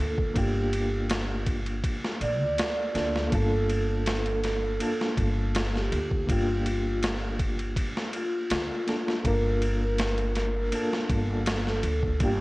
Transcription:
Already playing: A#3 D4 F4 A4
0.00 D2
0.18 kick
0.34 G1 A#3 D4 F4 G4, kick, ride
0.38 G4
0.73 ride
1.10 snare, ride
1.47 kick, ride
1.67 ride
1.84 kick, ride
2.05 snare
2.21 A#1 D5, ride
2.40 D2
2.58 snare, ride
2.95 D2 A#3 D4 F4 A4, snare, ride
3.16 snare
3.30 G1 A#3 D4 F4 A4, kick, ride
3.35 A4
3.69 ride
3.90 A4
4.06 snare, ride
4.26 ride
4.43 A4, snare, ride
4.80 A#3 D4 F4 A4, ride
5.01 snare
5.17 G1, kick, ride
5.55 snare, ride
5.75 G4, snare
5.92 D2, ride
6.11 kick
6.27 G1 A#3 D4 F4, kick, ride
6.32 G4
6.66 ride
7.03 snare, ride
7.39 kick, ride
7.59 ride
7.76 kick, ride
7.97 snare
8.13 F4, ride
8.50 D2, snare, ride
8.87 A#3 D4 F4 A4, snare, ride
9.08 snare
9.23 G1 A#3 D4 F4 A#4, kick, ride
9.27 A#4
9.62 ride
9.82 A#4
9.98 snare, ride
10.18 ride
10.35 A#4, snare, ride
10.72 A#3 D4 F4 A4, ride
10.93 snare
11.09 G1, kick, ride
11.46 snare, ride
11.67 A4, snare
11.83 D2, ride
12.03 kick
12.20 G1 A#3 D4 F4 G4, kick, ride
12.25 G4

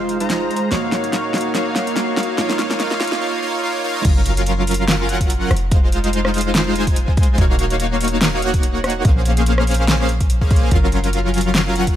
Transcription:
Already playing: F1 G#3 D#4 F4 C5 F5
0.09 closed hi-hat
0.20 G#3 D#4 F4 C5 A#5, closed hi-hat
0.30 snare, closed hi-hat
0.51 closed hi-hat
0.56 closed hi-hat
0.71 D#1 A#3 D#4 F#4 C#5 F5, snare, closed hi-hat
0.92 snare, closed hi-hat
1.04 closed hi-hat
1.13 snare, closed hi-hat
1.34 snare, closed hi-hat
1.38 closed hi-hat
1.41 closed hi-hat
1.55 A#3 D#4 F#4 C#5 F5, snare, closed hi-hat
1.76 snare, closed hi-hat
1.87 closed hi-hat
1.96 snare, closed hi-hat
2.17 snare, closed hi-hat
2.23 closed hi-hat
2.38 A#1 A#3 D#4 F4 C#5 F5, snare, closed hi-hat
2.50 snare
2.59 snare, closed hi-hat
2.71 snare, closed hi-hat
2.80 A#3 D#4 F4 C#5 F5, snare, closed hi-hat
2.91 snare
3.01 snare, closed hi-hat
3.04 closed hi-hat
3.07 closed hi-hat
3.12 snare
3.21 A#3 D#4 F4 C#5 F5
3.42 A#3 D#4 F4 C#5 F5
3.63 A#3 D#4 F4 C#5 F5
3.84 A#3 D#4 F4 C#5 F5
4.05 F#1 F#3 C#4, kick, closed hi-hat, crash
4.26 closed hi-hat
4.37 closed hi-hat
4.46 closed hi-hat
4.67 closed hi-hat, open hi-hat
4.74 closed hi-hat
4.88 snare, closed hi-hat
5.09 F#3 C#4 F4 A#4 F#5, closed hi-hat
5.21 kick, closed hi-hat
5.30 closed hi-hat
5.51 F1, cross-stick, closed hi-hat
5.57 closed hi-hat
5.72 G#3 D#4 F4 C5 F5, kick, closed hi-hat
5.92 closed hi-hat
6.04 closed hi-hat
6.13 closed hi-hat
6.25 cross-stick
6.34 closed hi-hat, open hi-hat
6.41 closed hi-hat
6.55 snare, closed hi-hat
6.76 G#3 D#4 F4 C5 G#5, closed hi-hat
6.87 kick, closed hi-hat
6.96 closed hi-hat
7.08 kick
7.17 kick, closed hi-hat
7.23 closed hi-hat
7.38 D#1 A#3 D#4 F#4 C#5 F5, kick, closed hi-hat
7.59 closed hi-hat
7.70 closed hi-hat
7.80 closed hi-hat
8.01 closed hi-hat, open hi-hat
8.08 closed hi-hat
8.22 snare, closed hi-hat
8.42 A#3 D#4 F#4 C#5 F#5, closed hi-hat
8.54 kick, closed hi-hat
8.63 closed hi-hat
8.84 cross-stick, closed hi-hat
8.90 closed hi-hat
9.05 A#1 A#3 C#4 G#4 C5 F5, kick, closed hi-hat
9.25 closed hi-hat
9.37 closed hi-hat
9.46 closed hi-hat
9.58 cross-stick
9.67 open hi-hat
9.71 closed hi-hat
9.74 closed hi-hat
9.88 snare, closed hi-hat
10.09 closed hi-hat
10.21 kick, closed hi-hat
10.30 closed hi-hat
10.41 A#3 C#4 G#4 C5 F5, kick
10.51 kick, closed hi-hat
10.56 closed hi-hat
10.71 F#1 F#3 C#4 F4 A#4 F5, kick, closed hi-hat
10.92 closed hi-hat
11.04 closed hi-hat
11.13 closed hi-hat
11.34 closed hi-hat, open hi-hat
11.41 closed hi-hat
11.55 snare, closed hi-hat
11.76 F#3 C#4 F4 A#4 F#5, closed hi-hat
11.87 kick, closed hi-hat

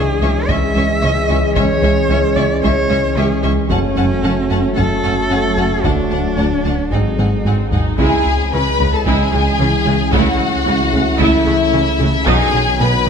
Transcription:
Already playing: C#2 E3 G#3 D4 G#4 C#5
0.21 C#2 C#4 E5 C#6
0.48 C#2 C#4 E5 C#6, taiko
0.75 C#2 C#4 E5 C#6
1.02 C#2 C#3 C#4 E5 C#6
1.29 C#2 C#4 E5 C#6
1.56 C#2 C#4 C#5 E5 C#6, taiko
1.82 C#2 C#4 E5 C#6
2.09 C#2 C#4 E5 C#6
2.36 C#2 C#4 D5 E5 C#6
2.62 C#2 C#4 C#5 E5 C#6, taiko
2.89 C#2 C#4 E5 C#6
3.16 C#2 C#3 C#4 G#4 E5 C#6
3.43 C#2 C#4 E5 C#6
3.69 F#1 F#2 F#3 A3 C#4 F#4 F#5 A5, taiko
3.96 F#1 F#2 C#4 F#5 A5
4.23 F#1 F#2 C#4 F#5 A5
4.50 F#1 F#2 C#4 F#5 A5
4.77 F#1 F#2 C#4 A4 F#5 A5, taiko
5.03 F#1 F#2 C#4 F#5 A5
5.30 F#1 F#2 F#3 C#4 F#5 A5
5.57 F#1 F#2 C#4 F#5 A5
5.84 D1 D2 D4 A4 F#5 A5, taiko
6.10 D2 D4 F#5 A5
6.37 D2 D4 F#5 A5
6.64 D2 D4 F#5 A5
6.90 G#1 G#2 G#3 C4 D#4 G#4 F#5 G#5, taiko
7.18 G#1 G#2 C4 F#5 G#5, taiko high
7.45 G#1 G#2 G#3 C4 F#5 G#5, taiko low-mid
7.71 G#1 G#2 D#4 F#5 G#5, taiko low
7.98 C#2 C#3 E3 G#3 C#4 E4 G#4 G#5, taiko
8.26 C#2
8.52 C#2 C#3 E3 C#4 B4 B5
8.79 C#2 C#3 G#3, taiko low
8.93 A4 A5
9.06 C#2 C#3 G#3 E4 G#4 G#5, taiko
9.33 C#2 C#3 G#3
9.59 C#2 C#3 E3 C#4
9.86 C#2 C#3 G#3
10.12 C#2 C#3 A3 E4 F#4 A4 F#5, taiko
10.39 C#2
10.66 C#2 C#3 E3 C#4
10.93 C#2 C#3 A3, taiko low
11.20 C#2 C#3 A3 E4 E5, taiko
11.46 C#2 C#3 A3
11.73 C#2 C#3 E3 C#4
11.99 C#2 C#3 A3
12.26 B1 B2 D#3 F#3 B3 D#4 F#4 G#4 B4 G#5, taiko
12.54 B2
12.80 B1 B2 D#3 B3 B4 B5
13.06 D#3 G#3

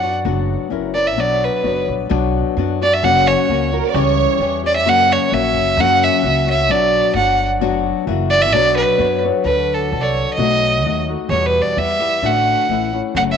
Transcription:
Already playing: F#2 F#5
0.03 B3 D4 F#4
0.25 F#1 F#3 B3 D4 F#4
0.70 F#1 F#3 C#4 E4 A#4
0.94 C#4 E4 A#4 D5
1.08 E5
1.16 B1 B2 F#3 B3 D4 F#4 C#5 D5
1.44 B4
1.64 F#1 B3 D4 F#4 C#5
1.88 A#1
2.09 B1 B2 F#3 B3 D4 F#4
2.57 F#2 F#3 B3 D4 F#4
2.81 B3 D4 F#4 D5
2.93 E5
3.03 F#1 F#2 C#3 F#3 A#3 C#4 F#4 F#5
3.27 C#5
3.49 C#2 F#3 A#3 C#4 F#4
3.72 F#3 A#3 C#4 F#4 A#4
3.88 D5
3.94 C#2 C#3 E3 G3 C#4 G4 C#5
4.39 E2 E3 G3 C#4 G4
4.64 G3 C#4 G4 D5
4.76 E5
4.86 F#2 C#3 F#3 A#3 C#4 F#4 F#5
5.12 C#5
5.31 A#1 F#3 A#3 C#4 F#4 E5
5.54 F#1
5.77 F#2 C#3 F#3 A#3 C#4 F#4 F#5
6.04 E5
6.23 C#2 F#3 A#3 C#4 F#4
6.47 F#3 A#3 C#4 F#4 E5
6.69 B1 B2 F#3 B3 D4 F#4 D5
7.14 G1 F#3 B3 D4 F#4 F#5
7.61 F#1 F#3 B3 D4 F#4
8.07 F#1 E3 A#3 E4 F#4
8.30 D5
8.42 E5
8.52 B1 B2 F#3 B3 D4 F#4 C#5 D5
8.77 B4
8.99 F#2 B3 D4 F#4 C#5
9.24 B3 D4 F#4 C#5
9.44 D2 D3 D4 F#4 A4 B4
9.74 A4
9.92 C2 D3 D4 F#4 A4
10.01 C#5 D5
10.34 B1 D#5
10.38 B2 F#3 A3 D#4 F#4
10.83 D#2 F#3 A3 D#4 F#4
11.08 A3 D#4 F#4
11.29 E2 B2 E3 G3 B3 G4 C#5
11.46 B4
11.62 D5
11.76 E2 E3 G3 B3 G4 E5
11.99 E3 G3 B3 G4
12.22 A1 A2 D3 A3 D4 F#4
12.27 F#5
12.69 A1 E3 A3 C#4 E4
12.93 A3 C#4 E4
13.15 F#1 F#2 C#3 F#3 A3 C#4 F#4 F#5
13.32 E5

